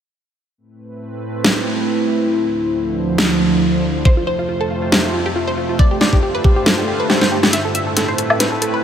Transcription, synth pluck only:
4.05 C5
4.17 F4
4.27 C5
4.39 F4
4.49 F4
4.61 A4
4.71 F4
4.82 F4
4.92 G4
5.04 F4
5.14 F4
5.26 G4
5.36 F4
5.47 C5
5.57 F4
5.69 F4
5.79 D5
5.91 G4
6.01 D5
6.13 G4
6.23 G4
6.35 B4
6.45 G4
6.56 G4
6.66 A4
6.78 G4
6.88 G4
7.00 B4
7.10 G4
7.22 C5
7.32 G4
7.43 G4
7.53 E5
7.65 A4
7.75 E5
7.87 A4
7.97 A4
8.08 C5
8.18 A4
8.30 A4
8.40 B4
8.52 A4
8.62 A4
8.74 B4

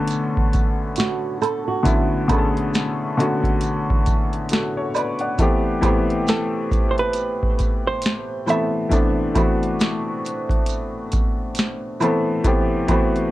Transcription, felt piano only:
Already playing: D3 A3 B3 C#4 F#4 A4
1.83 D3 A3 B3 C#4 E4
2.28 D3 A3 B3 C#4 G#4
2.38 A4
3.17 D3 A3 B3 C#4 F#4
4.51 F#4 A4
4.77 A4 C#5
4.95 B4 D5
5.21 D5 F#5
5.38 E3 A3 B3 C4 G4
5.81 E3 A3 B3 C4 G4
8.47 E3 A3 B3 C4 A4
8.89 E3 A3 B3 C4 D4
9.34 E3 A3 B3 C4 F#4
12.00 E3 A3 B3 C4 A4
12.44 E3 A3 B3 C4 G4
12.88 E3 A3 B3 C4 F#4

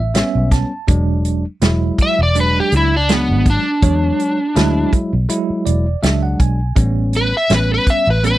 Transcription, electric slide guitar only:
2.02 E5
2.23 D5
2.40 B4
2.60 G4
2.77 E4
2.97 D4
3.13 B3
3.50 D4
7.16 B4
7.37 E5
7.54 B4
7.74 B4
7.90 E5
8.10 B4
8.27 B4

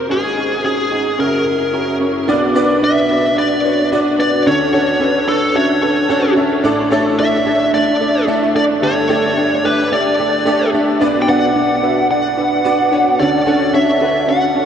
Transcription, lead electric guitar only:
0.11 G#4
0.66 G#4
1.20 A#4
2.84 E5
3.38 D5
4.20 D5
4.47 C#5
5.28 A4
5.56 C#5
7.20 E5
7.74 D5
8.56 D5
8.84 C#5
9.65 B4
9.93 D5
11.22 G5
11.29 F#5
12.11 F#5
13.20 D5
13.75 E5
14.29 F#5

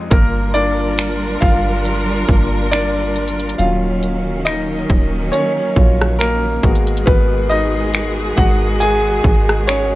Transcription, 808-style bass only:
0.11 G1
1.42 G1
2.29 G1
3.59 D#1
4.90 D#1
5.76 A#1
6.63 G#1
7.07 G#1
8.38 G#1
9.24 G#1

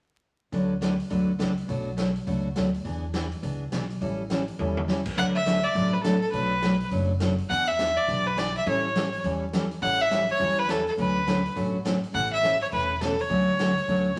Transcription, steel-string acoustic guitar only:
0.53 D3 F#3 A3 D4 F#4 B4
0.81 D3 F#3 A3 D4 F#4 B4
1.10 D3 F#3 A3 D4 F#4 B4
1.39 D3 F#3 A3 D4 F#4 B4
1.68 B2 F#3 A3 D4 F#4
1.97 B2 F#3 A3 D4 F#4
2.27 B2 F#3 A3 D4 F#4
2.56 B2 F#3 A3 D4 F#4
2.84 E3 B3 D4 G#4
3.14 E3 B3 D4 G#4
3.42 E3 B3 D4 G#4
3.72 E3 B3 D4 G#4
4.01 E3 G3 C#4 E4 A4
4.30 E3 G3 C#4 E4 A4
4.59 E3 G3 C#4 E4 A4
4.88 E3 G3 C#4 E4 A4
5.17 D3 F#3 A3 D4 F#4 B4
5.46 D3 F#3 A3 D4 F#4 B4
5.75 D3 F#3 A3 D4 F#4 B4
6.04 D3 F#3 A3 D4 F#4 B4
6.32 B2 F#3 A3 D4 F#4
6.62 B2 F#3 A3 D4 F#4
6.91 B2 F#3 A3 D4 F#4
7.21 B2 F#3 A3 D4 F#4
7.50 E3 B3 D4 G#4
7.79 E3 B3 D4 G#4
8.08 E3 B3 D4 G#4
8.37 E3 B3 D4 G#4
8.66 E3 G3 C#4 E4 A4
8.95 E3 G3 C#4 E4 A4
9.24 E3 G3 C#4 E4 A4
9.53 E3 G3 C#4 E4 A4
9.81 E3 G3 C#4 E4 A4
10.10 E3 G3 C#4 E4 A4
10.39 E3 G3 C#4 E4 A4
10.68 E3 G3 C#4 E4 A4
10.97 D3 F#3 A3 C#4 F#4
11.27 D3 F#3 A3 C#4 F#4
11.55 D3 F#3 A3 C#4 F#4
11.85 D3 F#3 A3 C#4 F#4
12.13 B2 E3 A3 C#4 A4
12.42 B2 E3 A3 C#4 A4
12.71 B2 E3 A3 C#4 A4
13.01 B2 E3 A3 C#4 A4
13.29 D3 F#3 A3 C#4 F#4
13.59 D3 F#3 A3 C#4 F#4
13.88 D3 F#3 A3 C#4 F#4
14.16 D3

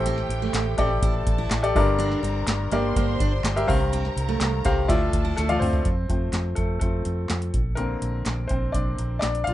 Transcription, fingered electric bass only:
Already playing: A1
0.29 A1
0.53 A1
0.78 A1
1.02 A1
1.27 A1
1.50 A1
1.75 G1
2.23 G1
2.47 G1
2.72 G1
2.96 G1
3.20 G1
3.44 G1
3.69 C2
4.16 C2
4.40 C2
4.65 C2
4.89 D2
5.13 D2
5.38 D2
5.61 D2
5.86 F2
6.10 F2
6.33 F2
6.58 F2
6.82 F2
7.06 F2
7.30 F2
7.54 A#1
8.02 A#1
8.26 A#1
8.50 A#1
8.74 A#1
8.99 A#1
9.23 A#1
9.47 A#1

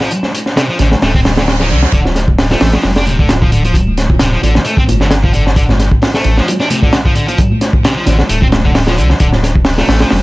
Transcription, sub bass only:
0.80 A1
1.02 D1
1.71 C2
1.93 D1
2.61 A1
2.84 F1
3.07 D1
4.43 A1
4.88 G1
6.25 A1
8.07 A1
8.30 D1
8.98 C2
9.20 D1
9.89 A1
10.12 F1

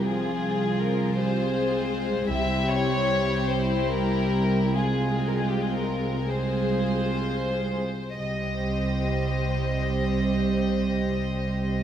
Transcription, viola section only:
0.05 F3 C4
1.17 G3 C4
1.55 G#3
1.92 G#3
2.30 G3 C4
3.48 G3
4.75 G#3 C4
6.28 G#3 C4
8.19 G3 C4

